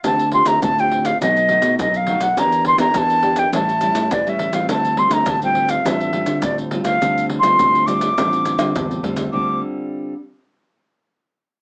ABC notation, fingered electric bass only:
X:1
M:4/4
L:1/16
Q:1/4=103
K:Dm
V:1 name="Fingered electric bass" clef=bass
D,,3 D,, D,,4 =B,,,3 =B,, B,,,3 B,,, | E,,3 E,, E,,4 A,,,3 A,, A,,,3 A,,, | D,,3 D,, D,,4 A,,,3 D, D,,3 D,, | D,,3 D,, D,,4 A,,,3 D, E,,2 D,,2 |
D,,2 z12 z2 |]